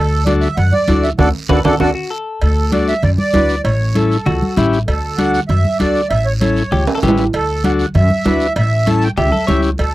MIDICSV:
0, 0, Header, 1, 6, 480
1, 0, Start_track
1, 0, Key_signature, 2, "major"
1, 0, Tempo, 307220
1, 1862, Time_signature, 4, 2, 24, 8
1, 15538, End_track
2, 0, Start_track
2, 0, Title_t, "Accordion"
2, 0, Program_c, 0, 21
2, 0, Note_on_c, 0, 69, 94
2, 376, Note_off_c, 0, 69, 0
2, 400, Note_on_c, 0, 74, 80
2, 513, Note_off_c, 0, 74, 0
2, 646, Note_on_c, 0, 76, 88
2, 876, Note_off_c, 0, 76, 0
2, 887, Note_on_c, 0, 78, 95
2, 1127, Note_on_c, 0, 74, 96
2, 1142, Note_off_c, 0, 78, 0
2, 1615, Note_on_c, 0, 76, 87
2, 1629, Note_off_c, 0, 74, 0
2, 1724, Note_off_c, 0, 76, 0
2, 1862, Note_on_c, 0, 78, 93
2, 1864, Note_on_c, 0, 74, 81
2, 1865, Note_on_c, 0, 69, 87
2, 2015, Note_off_c, 0, 78, 0
2, 2017, Note_off_c, 0, 69, 0
2, 2017, Note_off_c, 0, 74, 0
2, 2348, Note_on_c, 0, 78, 82
2, 2350, Note_on_c, 0, 69, 81
2, 2351, Note_on_c, 0, 74, 78
2, 2500, Note_off_c, 0, 69, 0
2, 2500, Note_off_c, 0, 78, 0
2, 2501, Note_off_c, 0, 74, 0
2, 2577, Note_on_c, 0, 74, 91
2, 2578, Note_on_c, 0, 69, 91
2, 2585, Note_on_c, 0, 78, 93
2, 2733, Note_off_c, 0, 69, 0
2, 2733, Note_off_c, 0, 74, 0
2, 2737, Note_off_c, 0, 78, 0
2, 2822, Note_on_c, 0, 78, 80
2, 2824, Note_on_c, 0, 74, 86
2, 2827, Note_on_c, 0, 69, 100
2, 2976, Note_off_c, 0, 78, 0
2, 2977, Note_off_c, 0, 74, 0
2, 2979, Note_off_c, 0, 69, 0
2, 3790, Note_on_c, 0, 69, 76
2, 4233, Note_off_c, 0, 69, 0
2, 4264, Note_on_c, 0, 74, 82
2, 4487, Note_off_c, 0, 74, 0
2, 4504, Note_on_c, 0, 76, 94
2, 4727, Note_off_c, 0, 76, 0
2, 4736, Note_on_c, 0, 74, 93
2, 4846, Note_off_c, 0, 74, 0
2, 4980, Note_on_c, 0, 74, 108
2, 5651, Note_off_c, 0, 74, 0
2, 5697, Note_on_c, 0, 73, 80
2, 6194, Note_on_c, 0, 69, 69
2, 6195, Note_off_c, 0, 73, 0
2, 7087, Note_off_c, 0, 69, 0
2, 7620, Note_on_c, 0, 69, 78
2, 8084, Note_on_c, 0, 78, 91
2, 8117, Note_off_c, 0, 69, 0
2, 8302, Note_off_c, 0, 78, 0
2, 8326, Note_on_c, 0, 78, 102
2, 8438, Note_off_c, 0, 78, 0
2, 8564, Note_on_c, 0, 76, 97
2, 9020, Note_off_c, 0, 76, 0
2, 9038, Note_on_c, 0, 74, 90
2, 9496, Note_off_c, 0, 74, 0
2, 9525, Note_on_c, 0, 76, 98
2, 9774, Note_on_c, 0, 73, 85
2, 9782, Note_off_c, 0, 76, 0
2, 9884, Note_off_c, 0, 73, 0
2, 10016, Note_on_c, 0, 73, 70
2, 10689, Note_off_c, 0, 73, 0
2, 11485, Note_on_c, 0, 69, 90
2, 11921, Note_off_c, 0, 69, 0
2, 11954, Note_on_c, 0, 78, 89
2, 12060, Note_off_c, 0, 78, 0
2, 12192, Note_on_c, 0, 78, 84
2, 12299, Note_off_c, 0, 78, 0
2, 12436, Note_on_c, 0, 76, 94
2, 13327, Note_off_c, 0, 76, 0
2, 13403, Note_on_c, 0, 76, 97
2, 13882, Note_on_c, 0, 81, 86
2, 13887, Note_off_c, 0, 76, 0
2, 14120, Note_off_c, 0, 81, 0
2, 14121, Note_on_c, 0, 79, 97
2, 14225, Note_off_c, 0, 79, 0
2, 14348, Note_on_c, 0, 76, 92
2, 15015, Note_off_c, 0, 76, 0
2, 15304, Note_on_c, 0, 69, 90
2, 15538, Note_off_c, 0, 69, 0
2, 15538, End_track
3, 0, Start_track
3, 0, Title_t, "Clean electric guitar"
3, 0, Program_c, 1, 27
3, 2336, Note_on_c, 1, 71, 87
3, 2568, Note_off_c, 1, 71, 0
3, 2574, Note_on_c, 1, 69, 104
3, 2823, Note_on_c, 1, 66, 83
3, 2825, Note_off_c, 1, 69, 0
3, 3025, Note_off_c, 1, 66, 0
3, 3044, Note_on_c, 1, 66, 81
3, 3289, Note_on_c, 1, 69, 85
3, 3300, Note_off_c, 1, 66, 0
3, 3742, Note_off_c, 1, 69, 0
3, 6662, Note_on_c, 1, 66, 110
3, 7153, Note_on_c, 1, 64, 99
3, 7158, Note_off_c, 1, 66, 0
3, 7483, Note_off_c, 1, 64, 0
3, 10502, Note_on_c, 1, 67, 89
3, 10838, Note_off_c, 1, 67, 0
3, 10860, Note_on_c, 1, 69, 99
3, 10915, Note_off_c, 1, 69, 0
3, 10982, Note_on_c, 1, 67, 91
3, 11343, Note_off_c, 1, 67, 0
3, 14336, Note_on_c, 1, 67, 81
3, 14558, Note_off_c, 1, 67, 0
3, 14564, Note_on_c, 1, 69, 88
3, 14793, Note_off_c, 1, 69, 0
3, 14800, Note_on_c, 1, 73, 100
3, 15145, Note_off_c, 1, 73, 0
3, 15538, End_track
4, 0, Start_track
4, 0, Title_t, "Transistor combo organ"
4, 0, Program_c, 2, 18
4, 411, Note_on_c, 2, 62, 77
4, 418, Note_on_c, 2, 66, 73
4, 423, Note_on_c, 2, 69, 80
4, 752, Note_off_c, 2, 62, 0
4, 755, Note_off_c, 2, 66, 0
4, 758, Note_off_c, 2, 69, 0
4, 1370, Note_on_c, 2, 62, 71
4, 1380, Note_on_c, 2, 66, 63
4, 1382, Note_on_c, 2, 69, 82
4, 1712, Note_off_c, 2, 62, 0
4, 1717, Note_off_c, 2, 66, 0
4, 1718, Note_off_c, 2, 69, 0
4, 1855, Note_on_c, 2, 66, 96
4, 1857, Note_on_c, 2, 69, 92
4, 1858, Note_on_c, 2, 62, 95
4, 2011, Note_off_c, 2, 66, 0
4, 2013, Note_off_c, 2, 62, 0
4, 2013, Note_off_c, 2, 69, 0
4, 2329, Note_on_c, 2, 69, 99
4, 2330, Note_on_c, 2, 62, 85
4, 2333, Note_on_c, 2, 66, 90
4, 2488, Note_off_c, 2, 62, 0
4, 2488, Note_off_c, 2, 69, 0
4, 2490, Note_off_c, 2, 66, 0
4, 2574, Note_on_c, 2, 69, 84
4, 2576, Note_on_c, 2, 62, 93
4, 2578, Note_on_c, 2, 66, 92
4, 2731, Note_off_c, 2, 69, 0
4, 2732, Note_off_c, 2, 62, 0
4, 2733, Note_off_c, 2, 66, 0
4, 2812, Note_on_c, 2, 62, 101
4, 2813, Note_on_c, 2, 69, 106
4, 2816, Note_on_c, 2, 66, 96
4, 2970, Note_off_c, 2, 62, 0
4, 2970, Note_off_c, 2, 69, 0
4, 2972, Note_off_c, 2, 66, 0
4, 4250, Note_on_c, 2, 62, 70
4, 4260, Note_on_c, 2, 66, 74
4, 4265, Note_on_c, 2, 69, 78
4, 4593, Note_off_c, 2, 62, 0
4, 4598, Note_off_c, 2, 66, 0
4, 4600, Note_off_c, 2, 69, 0
4, 5210, Note_on_c, 2, 62, 66
4, 5216, Note_on_c, 2, 66, 60
4, 5222, Note_on_c, 2, 71, 73
4, 5553, Note_off_c, 2, 62, 0
4, 5556, Note_off_c, 2, 66, 0
4, 5559, Note_off_c, 2, 71, 0
4, 6172, Note_on_c, 2, 61, 79
4, 6183, Note_on_c, 2, 64, 66
4, 6190, Note_on_c, 2, 69, 84
4, 6514, Note_off_c, 2, 61, 0
4, 6519, Note_off_c, 2, 64, 0
4, 6523, Note_off_c, 2, 69, 0
4, 7135, Note_on_c, 2, 61, 94
4, 7139, Note_on_c, 2, 64, 80
4, 7147, Note_on_c, 2, 67, 95
4, 7475, Note_off_c, 2, 61, 0
4, 7478, Note_off_c, 2, 64, 0
4, 7481, Note_off_c, 2, 67, 0
4, 8101, Note_on_c, 2, 62, 76
4, 8108, Note_on_c, 2, 66, 67
4, 8111, Note_on_c, 2, 69, 78
4, 8439, Note_off_c, 2, 62, 0
4, 8442, Note_off_c, 2, 66, 0
4, 8444, Note_off_c, 2, 69, 0
4, 9056, Note_on_c, 2, 62, 69
4, 9067, Note_on_c, 2, 66, 61
4, 9075, Note_on_c, 2, 69, 69
4, 9396, Note_off_c, 2, 62, 0
4, 9401, Note_off_c, 2, 66, 0
4, 9405, Note_off_c, 2, 69, 0
4, 10013, Note_on_c, 2, 61, 76
4, 10021, Note_on_c, 2, 64, 74
4, 10027, Note_on_c, 2, 69, 76
4, 10354, Note_off_c, 2, 61, 0
4, 10359, Note_off_c, 2, 64, 0
4, 10362, Note_off_c, 2, 69, 0
4, 10977, Note_on_c, 2, 61, 83
4, 10983, Note_on_c, 2, 64, 83
4, 10993, Note_on_c, 2, 71, 85
4, 11317, Note_off_c, 2, 61, 0
4, 11319, Note_off_c, 2, 64, 0
4, 11325, Note_off_c, 2, 71, 0
4, 11938, Note_on_c, 2, 62, 75
4, 11946, Note_on_c, 2, 66, 68
4, 11950, Note_on_c, 2, 69, 83
4, 12277, Note_off_c, 2, 62, 0
4, 12281, Note_off_c, 2, 66, 0
4, 12283, Note_off_c, 2, 69, 0
4, 12894, Note_on_c, 2, 62, 72
4, 12898, Note_on_c, 2, 66, 66
4, 12906, Note_on_c, 2, 71, 77
4, 13235, Note_off_c, 2, 62, 0
4, 13237, Note_off_c, 2, 66, 0
4, 13241, Note_off_c, 2, 71, 0
4, 13848, Note_on_c, 2, 61, 77
4, 13852, Note_on_c, 2, 64, 66
4, 13863, Note_on_c, 2, 69, 85
4, 14192, Note_off_c, 2, 61, 0
4, 14193, Note_off_c, 2, 64, 0
4, 14199, Note_off_c, 2, 69, 0
4, 14814, Note_on_c, 2, 61, 79
4, 14823, Note_on_c, 2, 64, 68
4, 14827, Note_on_c, 2, 67, 76
4, 15154, Note_off_c, 2, 61, 0
4, 15159, Note_off_c, 2, 64, 0
4, 15161, Note_off_c, 2, 67, 0
4, 15538, End_track
5, 0, Start_track
5, 0, Title_t, "Upright bass"
5, 0, Program_c, 3, 32
5, 0, Note_on_c, 3, 38, 102
5, 701, Note_off_c, 3, 38, 0
5, 892, Note_on_c, 3, 42, 113
5, 1088, Note_off_c, 3, 42, 0
5, 1378, Note_on_c, 3, 38, 89
5, 1763, Note_off_c, 3, 38, 0
5, 1853, Note_on_c, 3, 38, 99
5, 2036, Note_off_c, 3, 38, 0
5, 2332, Note_on_c, 3, 38, 82
5, 2515, Note_off_c, 3, 38, 0
5, 2571, Note_on_c, 3, 38, 93
5, 2755, Note_off_c, 3, 38, 0
5, 2816, Note_on_c, 3, 38, 98
5, 2997, Note_off_c, 3, 38, 0
5, 3781, Note_on_c, 3, 38, 97
5, 4550, Note_off_c, 3, 38, 0
5, 4735, Note_on_c, 3, 42, 100
5, 4930, Note_off_c, 3, 42, 0
5, 5219, Note_on_c, 3, 38, 77
5, 5605, Note_off_c, 3, 38, 0
5, 5694, Note_on_c, 3, 33, 107
5, 6466, Note_off_c, 3, 33, 0
5, 6655, Note_on_c, 3, 37, 111
5, 6851, Note_off_c, 3, 37, 0
5, 7146, Note_on_c, 3, 33, 90
5, 7529, Note_off_c, 3, 33, 0
5, 7621, Note_on_c, 3, 38, 102
5, 8390, Note_off_c, 3, 38, 0
5, 8586, Note_on_c, 3, 42, 111
5, 8777, Note_off_c, 3, 42, 0
5, 9065, Note_on_c, 3, 38, 77
5, 9449, Note_off_c, 3, 38, 0
5, 9539, Note_on_c, 3, 33, 94
5, 10309, Note_off_c, 3, 33, 0
5, 10495, Note_on_c, 3, 37, 110
5, 10691, Note_off_c, 3, 37, 0
5, 10978, Note_on_c, 3, 33, 83
5, 11364, Note_off_c, 3, 33, 0
5, 11461, Note_on_c, 3, 38, 104
5, 12230, Note_off_c, 3, 38, 0
5, 12419, Note_on_c, 3, 42, 110
5, 12613, Note_off_c, 3, 42, 0
5, 12896, Note_on_c, 3, 38, 81
5, 13283, Note_off_c, 3, 38, 0
5, 13374, Note_on_c, 3, 33, 112
5, 14145, Note_off_c, 3, 33, 0
5, 14333, Note_on_c, 3, 37, 124
5, 14529, Note_off_c, 3, 37, 0
5, 14820, Note_on_c, 3, 37, 78
5, 15205, Note_off_c, 3, 37, 0
5, 15297, Note_on_c, 3, 38, 99
5, 15538, Note_off_c, 3, 38, 0
5, 15538, End_track
6, 0, Start_track
6, 0, Title_t, "Drums"
6, 412, Note_on_c, 9, 73, 67
6, 414, Note_on_c, 9, 63, 82
6, 419, Note_on_c, 9, 56, 78
6, 568, Note_off_c, 9, 73, 0
6, 570, Note_off_c, 9, 63, 0
6, 576, Note_off_c, 9, 56, 0
6, 646, Note_on_c, 9, 73, 66
6, 803, Note_off_c, 9, 73, 0
6, 885, Note_on_c, 9, 74, 52
6, 897, Note_on_c, 9, 56, 83
6, 897, Note_on_c, 9, 64, 86
6, 1041, Note_off_c, 9, 74, 0
6, 1053, Note_off_c, 9, 56, 0
6, 1054, Note_off_c, 9, 64, 0
6, 1136, Note_on_c, 9, 63, 72
6, 1292, Note_off_c, 9, 63, 0
6, 1368, Note_on_c, 9, 73, 66
6, 1369, Note_on_c, 9, 63, 78
6, 1374, Note_on_c, 9, 56, 73
6, 1374, Note_on_c, 9, 66, 63
6, 1524, Note_off_c, 9, 73, 0
6, 1525, Note_off_c, 9, 63, 0
6, 1530, Note_off_c, 9, 56, 0
6, 1530, Note_off_c, 9, 66, 0
6, 1618, Note_on_c, 9, 73, 67
6, 1774, Note_off_c, 9, 73, 0
6, 1851, Note_on_c, 9, 64, 103
6, 1855, Note_on_c, 9, 65, 92
6, 1856, Note_on_c, 9, 74, 103
6, 2007, Note_off_c, 9, 64, 0
6, 2011, Note_off_c, 9, 65, 0
6, 2012, Note_off_c, 9, 74, 0
6, 2328, Note_on_c, 9, 64, 88
6, 2331, Note_on_c, 9, 74, 95
6, 2332, Note_on_c, 9, 65, 107
6, 2485, Note_off_c, 9, 64, 0
6, 2488, Note_off_c, 9, 74, 0
6, 2489, Note_off_c, 9, 65, 0
6, 2566, Note_on_c, 9, 74, 91
6, 2576, Note_on_c, 9, 64, 99
6, 2576, Note_on_c, 9, 65, 112
6, 2723, Note_off_c, 9, 74, 0
6, 2732, Note_off_c, 9, 64, 0
6, 2732, Note_off_c, 9, 65, 0
6, 2808, Note_on_c, 9, 64, 90
6, 2810, Note_on_c, 9, 74, 81
6, 2812, Note_on_c, 9, 65, 93
6, 2964, Note_off_c, 9, 64, 0
6, 2966, Note_off_c, 9, 74, 0
6, 2968, Note_off_c, 9, 65, 0
6, 3773, Note_on_c, 9, 56, 90
6, 3778, Note_on_c, 9, 74, 79
6, 3929, Note_off_c, 9, 56, 0
6, 3934, Note_off_c, 9, 74, 0
6, 4251, Note_on_c, 9, 63, 83
6, 4252, Note_on_c, 9, 73, 60
6, 4256, Note_on_c, 9, 56, 72
6, 4408, Note_off_c, 9, 63, 0
6, 4408, Note_off_c, 9, 73, 0
6, 4413, Note_off_c, 9, 56, 0
6, 4496, Note_on_c, 9, 73, 71
6, 4652, Note_off_c, 9, 73, 0
6, 4727, Note_on_c, 9, 74, 52
6, 4731, Note_on_c, 9, 64, 86
6, 4735, Note_on_c, 9, 56, 77
6, 4883, Note_off_c, 9, 74, 0
6, 4887, Note_off_c, 9, 64, 0
6, 4891, Note_off_c, 9, 56, 0
6, 4971, Note_on_c, 9, 63, 69
6, 5127, Note_off_c, 9, 63, 0
6, 5203, Note_on_c, 9, 73, 68
6, 5210, Note_on_c, 9, 63, 82
6, 5215, Note_on_c, 9, 56, 73
6, 5215, Note_on_c, 9, 66, 69
6, 5359, Note_off_c, 9, 73, 0
6, 5366, Note_off_c, 9, 63, 0
6, 5371, Note_off_c, 9, 56, 0
6, 5371, Note_off_c, 9, 66, 0
6, 5454, Note_on_c, 9, 73, 67
6, 5610, Note_off_c, 9, 73, 0
6, 5699, Note_on_c, 9, 56, 105
6, 5700, Note_on_c, 9, 74, 74
6, 5855, Note_off_c, 9, 56, 0
6, 5856, Note_off_c, 9, 74, 0
6, 6178, Note_on_c, 9, 56, 69
6, 6178, Note_on_c, 9, 63, 81
6, 6184, Note_on_c, 9, 73, 63
6, 6334, Note_off_c, 9, 56, 0
6, 6334, Note_off_c, 9, 63, 0
6, 6341, Note_off_c, 9, 73, 0
6, 6430, Note_on_c, 9, 73, 60
6, 6586, Note_off_c, 9, 73, 0
6, 6658, Note_on_c, 9, 56, 80
6, 6666, Note_on_c, 9, 64, 91
6, 6675, Note_on_c, 9, 74, 62
6, 6814, Note_off_c, 9, 56, 0
6, 6822, Note_off_c, 9, 64, 0
6, 6831, Note_off_c, 9, 74, 0
6, 6910, Note_on_c, 9, 63, 67
6, 7066, Note_off_c, 9, 63, 0
6, 7142, Note_on_c, 9, 56, 62
6, 7147, Note_on_c, 9, 63, 83
6, 7147, Note_on_c, 9, 64, 66
6, 7150, Note_on_c, 9, 73, 73
6, 7298, Note_off_c, 9, 56, 0
6, 7303, Note_off_c, 9, 63, 0
6, 7303, Note_off_c, 9, 64, 0
6, 7306, Note_off_c, 9, 73, 0
6, 7389, Note_on_c, 9, 73, 62
6, 7545, Note_off_c, 9, 73, 0
6, 7624, Note_on_c, 9, 56, 105
6, 7625, Note_on_c, 9, 74, 76
6, 7781, Note_off_c, 9, 56, 0
6, 7781, Note_off_c, 9, 74, 0
6, 8097, Note_on_c, 9, 63, 74
6, 8102, Note_on_c, 9, 56, 72
6, 8104, Note_on_c, 9, 73, 67
6, 8254, Note_off_c, 9, 63, 0
6, 8258, Note_off_c, 9, 56, 0
6, 8260, Note_off_c, 9, 73, 0
6, 8347, Note_on_c, 9, 73, 68
6, 8504, Note_off_c, 9, 73, 0
6, 8576, Note_on_c, 9, 74, 63
6, 8579, Note_on_c, 9, 64, 75
6, 8586, Note_on_c, 9, 56, 77
6, 8732, Note_off_c, 9, 74, 0
6, 8735, Note_off_c, 9, 64, 0
6, 8743, Note_off_c, 9, 56, 0
6, 8823, Note_on_c, 9, 63, 65
6, 8979, Note_off_c, 9, 63, 0
6, 9057, Note_on_c, 9, 73, 65
6, 9059, Note_on_c, 9, 63, 80
6, 9062, Note_on_c, 9, 56, 76
6, 9213, Note_off_c, 9, 73, 0
6, 9215, Note_off_c, 9, 63, 0
6, 9218, Note_off_c, 9, 56, 0
6, 9302, Note_on_c, 9, 73, 62
6, 9458, Note_off_c, 9, 73, 0
6, 9538, Note_on_c, 9, 56, 94
6, 9542, Note_on_c, 9, 74, 78
6, 9695, Note_off_c, 9, 56, 0
6, 9698, Note_off_c, 9, 74, 0
6, 10017, Note_on_c, 9, 73, 67
6, 10019, Note_on_c, 9, 56, 72
6, 10021, Note_on_c, 9, 63, 86
6, 10173, Note_off_c, 9, 73, 0
6, 10176, Note_off_c, 9, 56, 0
6, 10178, Note_off_c, 9, 63, 0
6, 10256, Note_on_c, 9, 73, 63
6, 10412, Note_off_c, 9, 73, 0
6, 10498, Note_on_c, 9, 64, 74
6, 10499, Note_on_c, 9, 56, 76
6, 10500, Note_on_c, 9, 74, 58
6, 10655, Note_off_c, 9, 56, 0
6, 10655, Note_off_c, 9, 64, 0
6, 10656, Note_off_c, 9, 74, 0
6, 10739, Note_on_c, 9, 65, 105
6, 10896, Note_off_c, 9, 65, 0
6, 10899, Note_on_c, 9, 65, 65
6, 10972, Note_on_c, 9, 73, 73
6, 10982, Note_on_c, 9, 63, 74
6, 10982, Note_on_c, 9, 64, 73
6, 10984, Note_on_c, 9, 56, 65
6, 11055, Note_off_c, 9, 65, 0
6, 11065, Note_on_c, 9, 66, 102
6, 11128, Note_off_c, 9, 73, 0
6, 11139, Note_off_c, 9, 63, 0
6, 11139, Note_off_c, 9, 64, 0
6, 11140, Note_off_c, 9, 56, 0
6, 11211, Note_on_c, 9, 73, 66
6, 11221, Note_off_c, 9, 66, 0
6, 11225, Note_on_c, 9, 66, 75
6, 11368, Note_off_c, 9, 73, 0
6, 11381, Note_off_c, 9, 66, 0
6, 11456, Note_on_c, 9, 74, 77
6, 11466, Note_on_c, 9, 56, 109
6, 11612, Note_off_c, 9, 74, 0
6, 11623, Note_off_c, 9, 56, 0
6, 11938, Note_on_c, 9, 63, 88
6, 11938, Note_on_c, 9, 73, 59
6, 11945, Note_on_c, 9, 56, 69
6, 12094, Note_off_c, 9, 73, 0
6, 12095, Note_off_c, 9, 63, 0
6, 12102, Note_off_c, 9, 56, 0
6, 12174, Note_on_c, 9, 73, 64
6, 12330, Note_off_c, 9, 73, 0
6, 12406, Note_on_c, 9, 74, 55
6, 12417, Note_on_c, 9, 64, 81
6, 12422, Note_on_c, 9, 56, 80
6, 12562, Note_off_c, 9, 74, 0
6, 12573, Note_off_c, 9, 64, 0
6, 12579, Note_off_c, 9, 56, 0
6, 12659, Note_on_c, 9, 63, 66
6, 12816, Note_off_c, 9, 63, 0
6, 12883, Note_on_c, 9, 73, 67
6, 12899, Note_on_c, 9, 56, 73
6, 12899, Note_on_c, 9, 66, 79
6, 12902, Note_on_c, 9, 63, 80
6, 13039, Note_off_c, 9, 73, 0
6, 13055, Note_off_c, 9, 56, 0
6, 13055, Note_off_c, 9, 66, 0
6, 13059, Note_off_c, 9, 63, 0
6, 13130, Note_on_c, 9, 73, 66
6, 13286, Note_off_c, 9, 73, 0
6, 13371, Note_on_c, 9, 74, 78
6, 13376, Note_on_c, 9, 56, 112
6, 13528, Note_off_c, 9, 74, 0
6, 13532, Note_off_c, 9, 56, 0
6, 13846, Note_on_c, 9, 73, 73
6, 13859, Note_on_c, 9, 63, 82
6, 13860, Note_on_c, 9, 56, 73
6, 14002, Note_off_c, 9, 73, 0
6, 14015, Note_off_c, 9, 63, 0
6, 14016, Note_off_c, 9, 56, 0
6, 14089, Note_on_c, 9, 73, 60
6, 14245, Note_off_c, 9, 73, 0
6, 14327, Note_on_c, 9, 74, 57
6, 14335, Note_on_c, 9, 56, 90
6, 14336, Note_on_c, 9, 64, 82
6, 14483, Note_off_c, 9, 74, 0
6, 14491, Note_off_c, 9, 56, 0
6, 14493, Note_off_c, 9, 64, 0
6, 14579, Note_on_c, 9, 63, 65
6, 14735, Note_off_c, 9, 63, 0
6, 14800, Note_on_c, 9, 73, 66
6, 14817, Note_on_c, 9, 63, 83
6, 14817, Note_on_c, 9, 64, 65
6, 14818, Note_on_c, 9, 56, 67
6, 14818, Note_on_c, 9, 66, 69
6, 14956, Note_off_c, 9, 73, 0
6, 14973, Note_off_c, 9, 63, 0
6, 14973, Note_off_c, 9, 64, 0
6, 14974, Note_off_c, 9, 56, 0
6, 14974, Note_off_c, 9, 66, 0
6, 15036, Note_on_c, 9, 73, 65
6, 15193, Note_off_c, 9, 73, 0
6, 15282, Note_on_c, 9, 74, 84
6, 15297, Note_on_c, 9, 56, 100
6, 15438, Note_off_c, 9, 74, 0
6, 15454, Note_off_c, 9, 56, 0
6, 15538, End_track
0, 0, End_of_file